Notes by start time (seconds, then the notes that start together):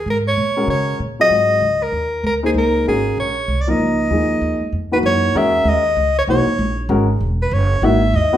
0.06 G#2
0.10 A#4
0.28 C#5
0.37 A#2
0.56 G#3 C#4 F#4 A#4
0.68 C#3 C#5
1.00 A#2
1.19 F#3 C4 F4 G#4 D#5
1.30 G#2
1.61 C#2
1.83 A#4
1.92 D#2
2.23 D2 A#4
2.43 A#3 D#4 G#4 C5
2.54 C#2 A#4
2.86 G#1 G#3 C#4 F#4 G#4 A#4
3.17 A#1 C#5
3.48 C2
3.61 D5
3.67 F3 A#3 D#4 A#4 D#5
3.79 C#2
4.10 D#2 F3 A#3 D#4 G#4
4.41 D#2
4.61 muted upright bass stroke
4.72 F2
4.92 E3 A#3 D#4 F#4 B4
5.03 F#2 C#5
5.35 E2 G#3 C#4 F#4 A#4 E5
5.65 D#2
5.69 D#5
5.96 C#2
6.19 C#5
6.27 B1 E3 A#3 D#4 F#4 C#5
6.46 muted upright bass stroke
6.58 A#1
6.89 G#1 G#3 C#4 F#4 A#4
7.20 E1
7.42 B4
7.51 F#1 C#5
7.82 G#1 E3 A#3 D#4 F#4 E5
8.13 D#2 D#5
8.32 F#3 B3 E4 F#4